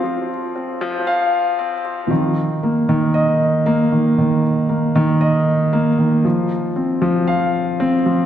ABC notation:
X:1
M:4/4
L:1/8
Q:1/4=116
K:Eb
V:1 name="Grand piano" clef=bass
F, z C F, f z C F, | E, z B, E, e z B, E, | E, z B, E, e z B, E, | F, z C F, f z C F, |]